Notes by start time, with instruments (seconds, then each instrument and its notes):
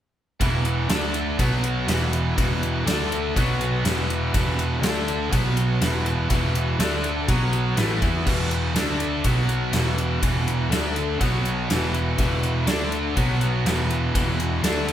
0.39 picked electric bass E1, overdriven electric guitar E2 B2 E3, tonewheel organ E4 B4 F#5, kick, ride
0.65 ride
0.89 picked electric bass D2, overdriven electric guitar D3 A3 D4, tonewheel organ D4 A4 E5, snare, ride
1.14 ride
1.39 picked electric bass B1, overdriven electric guitar B2 F#3 B3, tonewheel organ B3 F#4 C#5, kick, ride
1.64 ride
1.87 picked electric bass E1, overdriven electric guitar E2 B2 E3, tonewheel organ E4 B4 F#5, snare, ride
2.13 ride
2.37 picked electric bass E1, overdriven electric guitar E2 B2 E3, kick, ride
2.63 ride
2.85 picked electric bass D2, overdriven electric guitar D3 A3 D4, tonewheel organ D4 A4 E5, snare, ride
3.12 ride
3.35 picked electric bass B1, overdriven electric guitar B2 F#3 B3, tonewheel organ B3 F#4 C#5, kick, ride
3.61 ride
3.84 picked electric bass E1, overdriven electric guitar E2 B2 E3, tonewheel organ E4 B4 F#5, snare, ride
4.10 ride
4.33 picked electric bass E1, overdriven electric guitar E2 B2 E3, kick, ride
4.59 ride
4.82 picked electric bass D2, overdriven electric guitar D3 A3 D4, tonewheel organ D4 A4 E5, snare, ride
5.08 ride
5.31 picked electric bass B1, overdriven electric guitar B2 F#3 B3, tonewheel organ B3 F#4 C#5, kick, ride
5.57 ride
5.80 picked electric bass E1, overdriven electric guitar E2 B2 E3, tonewheel organ E4 B4 F#5, snare, ride
6.06 ride
6.29 picked electric bass E1, overdriven electric guitar E2 B2 E3, kick, ride
6.55 ride
6.79 picked electric bass D2, overdriven electric guitar D3 A3 D4, tonewheel organ D4 A4 E5, snare, ride
7.04 ride
7.28 picked electric bass B1, overdriven electric guitar B2 F#3 B3, tonewheel organ B3 F#4 C#5, kick, ride
7.53 ride
7.76 picked electric bass A1, overdriven electric guitar A2 E3 A3, tonewheel organ E4 B4 F#5, snare, ride
8.01 picked electric bass E2, overdriven electric guitar E3 B3 E4, kick, ride
8.26 picked electric bass E1, overdriven electric guitar E2 B2 E3, kick, crash
8.51 ride
8.74 picked electric bass D2, overdriven electric guitar D3 A3 D4, tonewheel organ D4 A4 E5, snare, ride
9.00 ride
9.24 picked electric bass B1, overdriven electric guitar B2 F#3 B3, tonewheel organ B3 F#4 C#5, kick, ride
9.49 ride
9.72 picked electric bass E1, overdriven electric guitar E2 B2 E3, tonewheel organ E4 B4 F#5, snare, ride
9.98 ride
10.21 picked electric bass E1, overdriven electric guitar E2 B2 E3, kick, ride
10.48 ride
10.70 picked electric bass D2, overdriven electric guitar D3 A3 D4, tonewheel organ D4 A4 E5, snare, ride
10.96 ride
11.20 picked electric bass B1, overdriven electric guitar B2 F#3 B3, tonewheel organ B3 F#4 C#5, kick, ride
11.45 ride
11.68 picked electric bass E1, overdriven electric guitar E2 B2 E3, tonewheel organ E4 B4 F#5, snare, ride
11.94 ride
12.17 picked electric bass E1, overdriven electric guitar E2 B2 E3, kick, ride
12.43 ride
12.67 picked electric bass D2, overdriven electric guitar D3 A3 D4, tonewheel organ D4 A4 E5, snare, ride
12.92 ride
13.16 picked electric bass B1, overdriven electric guitar B2 F#3 B3, tonewheel organ B3 F#4 C#5, kick, ride
13.41 ride
13.65 picked electric bass E1, overdriven electric guitar E2 B2 E3, tonewheel organ E4 B4 F#5, snare, ride
13.91 ride
14.14 picked electric bass E1, overdriven electric guitar E2 B2 E3, kick, ride
14.40 ride
14.63 picked electric bass D2, overdriven electric guitar D3 A3 D4, tonewheel organ D4 A4 E5, snare, ride
14.88 ride